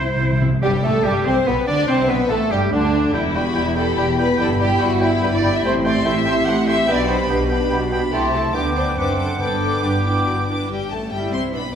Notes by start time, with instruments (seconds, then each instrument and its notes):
Already playing: double bass section C2, cello section E4, violin section E4 C5, oboe C5
0.02 timpani C3
0.09 timpani C3
0.16 double bass section C2, timpani C3, viola section C4 E4
0.24 timpani C3
0.33 timpani C3
0.41 timpani C3, viola section C4 E4
0.48 timpani C3
0.62 double bass section G1, cello section G2, viola section G3, clarinet G3, bassoon G3, french horn section G3, oboe G4, flute section G4, violin section G4
0.83 double bass section A1, cello section A2, viola section A3, french horn section A3, bassoon A3, clarinet A3, oboe A4, flute section A4, violin section A4
1.03 double bass section G1, cello section G2, viola section G3, bassoon G3, clarinet G3, french horn section G3, oboe G4, violin section G4, flute section G4
1.25 double bass section C2, cello section C3, viola section C4, clarinet C4, bassoon C4, french horn section C4, oboe C5, violin section C5, flute section C5
1.47 double bass section B1, cello section B2, viola section B3, bassoon B3, french horn section B3, clarinet B3, oboe B4, flute section B4, violin section B4
1.67 double bass section D2, cello section D3, viola section D4, clarinet D4, bassoon D4, french horn section D4, oboe D5, flute section D5, violin section D5
1.87 double bass section C2, cello section C3, french horn section C4, viola section C4, bassoon C4, clarinet C4, oboe C5, flute section C5, violin section C5
2.05 cello section B2, french horn section B3, viola section B3, flute section B4, oboe B4, violin section B4
2.10 double bass section B1, bassoon B3, clarinet B3, violin section B4
2.28 double bass section A1, cello section A2, french horn section A3, viola section A3, bassoon A3, clarinet A3, oboe A4, flute section A4, violin section A4
2.50 double bass section G1, cello section G2, french horn section G3, viola section G3, clarinet G3, bassoon G3, flute section G4, oboe G4, violin section G4
2.71 cello section D2, double bass section D2, bassoon D3, viola section D3, french horn section D3, clarinet D3, oboe D4, flute section D4, violin section D4
3.13 double bass section E1, cello section E2, bassoon G3, french horn section B3 G4, violin section E4, clarinet E4, oboe G5, flute section B5
3.35 bassoon G3, viola section B3 G4, clarinet E4, violin section F#4 B5, oboe G5, flute section B5
3.55 double bass section E1, cello section E2, bassoon G3, violin section E4, clarinet E4, oboe G5, flute section B5
3.76 bassoon G3, viola section B3 G4, clarinet E4, violin section A4 B5, oboe G5, flute section B5
3.95 double bass section E1, cello section E2, bassoon G3, clarinet E4, violin section G4, oboe G5, flute section B5
4.16 bassoon G3, viola section B3 G4, clarinet E4, violin section B4 B5, oboe G5, flute section B5
4.36 double bass section G1, cello section G2, viola section E4 G4, french horn section E4, clarinet E4, violin section A4 B5, oboe G5, flute section B5
4.41 bassoon G3
4.58 bassoon G3, viola section E4 G4, clarinet E4, violin section G4 B5, oboe G5, flute section B5
4.78 double bass section G1, cello section G2, bassoon G3, clarinet E4, violin section F#4, oboe G5, flute section B5
5.00 bassoon G3, violin section E4 B5, clarinet E4, viola section E4 G4, oboe G5, flute section B5
5.22 double bass section G1, cello section G2, bassoon G3, clarinet E4, violin section B4, oboe G5, flute section B5
5.34 violin section D5
5.42 bassoon G3, clarinet E4, viola section E4 G4, oboe G5, flute section B5, violin section B5
5.55 violin section E5
5.63 double bass section A1, cello section A2, bassoon A3, french horn section C4 G4, clarinet E4, violin section C5, oboe G5, flute section C6
5.84 bassoon A3, clarinet E4, viola section E4 G4, violin section D5 C6, oboe G5, flute section C6
6.05 double bass section A1, cello section A2, bassoon A3, french horn section C4 G4, clarinet E4, violin section E5, oboe G5, flute section C6
6.25 bassoon A3, clarinet E4, viola section E4 G4, oboe G5, violin section C6
6.29 flute section C6
6.45 double bass section A1, cello section A2, bassoon A3, clarinet E4, violin section F#5, oboe G5
6.50 flute section C6
6.67 bassoon A3, clarinet E4, viola section E4 G4, violin section E5 C6, oboe G5, flute section C6
6.86 double bass section B1, cello section B2, french horn section B3 G4, bassoon B3, viola section D4 G4, clarinet D4, violin section D5 B5, oboe G5, flute section B5
7.07 bassoon B3, clarinet D4, viola section D4 G4, violin section C5 B5, oboe G5, flute section B5
7.29 double bass section B1, cello section B2, french horn section B3 G4, bassoon B3, clarinet D4, violin section B4, oboe G5, flute section B5
7.49 bassoon B3, clarinet D4, viola section D4 G4, oboe G5, violin section B5, flute section B5
7.70 double bass section B1, cello section B2, bassoon B3, clarinet D4, french horn section F#4, oboe G5, flute section B5
7.91 bassoon B3, viola section D4 G4, clarinet D4, oboe G5, violin section B5, flute section B5
8.12 double bass section C2, cello section C3, french horn section A3 E4, bassoon A3, clarinet E4, violin section G4, oboe A5, flute section C6
8.32 viola section E4 A4, violin section A4 A5
8.53 double bass section D2, cello section D3, french horn section B3 D4, bassoon B3, clarinet D4, viola section D4 B4, violin section G4 D6, oboe G5, flute section D6
8.75 viola section D4 B4, violin section C5 D6
8.95 double bass section F#1, cello section F#2, french horn section C4 D4, bassoon C4, clarinet D4, violin section B4 D6, viola section C5, oboe F#5, flute section D6
8.99 viola section D4
9.19 viola section D4 C5, violin section A4 D6
9.39 double bass section G1, timpani G2, cello section G2, bassoon B3, french horn section B3 D4, clarinet D4, viola section D4 B4, violin section A4 D6, oboe G5, flute section D6
9.62 viola section D4 B4, violin section D6
9.82 double bass section G1, cello section G2, french horn section B3 D4, bassoon B3, clarinet D4, violin section G4, oboe G5, flute section D6
10.04 viola section D4 B4, clarinet E4, violin section D6
10.26 double bass section G1, cello section G2, clarinet F#4
10.49 viola section D4 B4, clarinet E4, violin section D6
10.69 double bass section G1, french horn section G3, viola section G3, violin section G4 G5
10.90 double bass section A1, french horn section A3, viola section A3, violin section A4 A5
11.11 double bass section G1, viola section G3, french horn section G3, cello section E4, violin section G4 G5
11.31 double bass section C2, viola section C4, french horn section C4, violin section C5 C6
11.52 double bass section B1, viola section B3, french horn section B3, cello section D4, violin section B4 B5